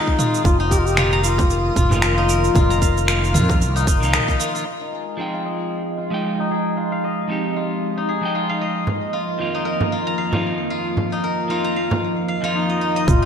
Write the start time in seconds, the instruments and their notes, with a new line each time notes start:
Already playing: clean electric guitar D#3 G#3 C4 F4, duduk D#4, guzheng D#4 F4 G#4 D#5 F5, analog synth pad F5 D#6
0.07 kick
0.19 guzheng F4, mid tom, cabasa
0.34 cabasa
0.44 fretless electric bass F1, duduk F4, analog synth pad A#4 D#6, kick, frame drum, cabasa
0.60 guzheng D#4
0.70 duduk G4, guzheng A#4, kick, cabasa
0.79 duduk F4
0.86 duduk G4, cabasa
0.95 clean electric guitar D#3 F3 A#3 D#4, guzheng F4, finger snap, mid tom, cabasa
0.99 clean electric guitar F4
1.13 guzheng A#5
1.23 duduk F4, guzheng F5, cabasa
1.38 kick, frame drum, cabasa
1.50 cabasa
1.76 fretless electric bass F1, guzheng F4, kick, mid tom, cabasa
1.89 clean electric guitar D#3 F3 A#3 D#4, frame drum, cabasa
1.94 clean electric guitar F4
2.02 finger snap, cabasa
2.18 guzheng D#4
2.29 guzheng A#4, cabasa
2.44 cabasa
2.55 fretless electric bass F1, guzheng F4, analog synth pad F6, kick, mid tom, frame drum, cabasa
2.70 guzheng A#5, cabasa
2.82 guzheng F5, kick, cabasa
2.98 cabasa
3.06 clean electric guitar D#3 F3 A#3 D#4 F4, finger snap, cabasa
3.24 cabasa
3.34 fretless electric bass F2, guzheng F4, mid tom, cabasa
3.49 kick, frame drum, cabasa
3.61 fretless electric bass C2, cabasa
3.76 guzheng D#4, cabasa
3.87 fretless electric bass F1, guzheng D#4, kick, cabasa
4.00 fretless electric bass C2, clean electric guitar D#3 F3 A#3 D#4 F4, cabasa
4.13 guzheng D#5, finger snap, mid tom, cabasa
4.28 guzheng D#4, kick, cabasa
4.40 guzheng F4, cabasa
4.55 guzheng F4, cabasa
4.66 analog synth pad G#3 F4 D#5
4.81 guzheng D#4
4.92 guzheng G#4
5.17 clean electric guitar F3 G#3 C4 D#4, guzheng F4
5.21 clean electric guitar G5
5.34 guzheng F5
5.45 guzheng D#5
5.98 guzheng F4
6.10 clean electric guitar F3 G#3 D#4 G5
6.39 guzheng D#4
6.51 guzheng G#4
6.77 analog synth pad D#4, guzheng F4
6.92 guzheng F5
7.04 guzheng D#5
7.28 clean electric guitar F3 G#3 C4 D#4 G4
7.56 guzheng F4
7.97 guzheng D#4
8.09 guzheng G#4
8.21 clean electric guitar F3 G#3 D#4
8.25 clean electric guitar G5
8.35 guzheng F4
8.49 guzheng F5
8.61 guzheng D#5
8.87 analog synth pad F3 A#3 F4, frame drum
9.13 guzheng F4
9.38 clean electric guitar F2 D#3 F3 A#3 D#4
9.42 clean electric guitar F4
9.55 guzheng D#4
9.65 guzheng A#4
9.81 frame drum
9.92 guzheng F4
10.07 guzheng A#5
10.18 guzheng F5
10.31 clean electric guitar F2 D#3 F3 A#3 D#4, frame drum
10.35 clean electric guitar F4
10.70 guzheng F4
10.97 frame drum
11.12 guzheng D#4
11.24 guzheng A#4
11.47 clean electric guitar F2 D#3 F3 A#3 D#4, guzheng F4
11.52 clean electric guitar F4
11.64 guzheng A#5
11.76 guzheng F5
11.91 frame drum
12.28 guzheng F5
12.41 clean electric guitar F2 D#3 F3 A#3 D#4, guzheng F4
12.45 clean electric guitar F4
12.56 duduk D#4
12.69 guzheng D#5
12.81 guzheng D#4
12.96 guzheng D#5
13.08 fretless electric bass F1, analog synth pad F4 F5, duduk F4, kick, mid tom, cabasa